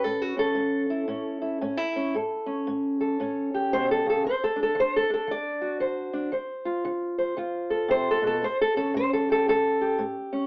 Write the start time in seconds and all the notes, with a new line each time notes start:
Already playing: C#4
0.04 A2 A4
0.22 F#4
0.37 C#4 A4
0.55 A2
0.90 E4
1.08 A2 C#4
1.42 E4
1.61 A2 C#4
1.77 E4
1.96 C#4
2.15 A2 A4
2.46 C#4
2.67 A2
3.01 A4
3.20 A2 C#4
3.54 G4
3.73 B2 C5
3.91 A4
4.06 C#3 A4
4.25 D3 C5
4.44 A4
4.56 D4
4.63 A4
4.75 D3
4.80 C5
4.96 A4
5.10 D4 A4
5.27 D3 D5
5.61 F#4
5.80 D3 C5
6.13 D4
6.32 D3 C5
6.65 F4
6.85 D3
7.18 C5
7.37 D3 F4
7.70 A4
7.88 C3 C5
8.11 A4
8.22 B2
8.27 A4
8.42 A2 C5
8.61 A4
8.76 C#4 A4
8.94 A2 C5
9.13 A4
9.29 G4 A4
9.48 A2 A4
9.81 G4
9.98 A2
10.33 C#4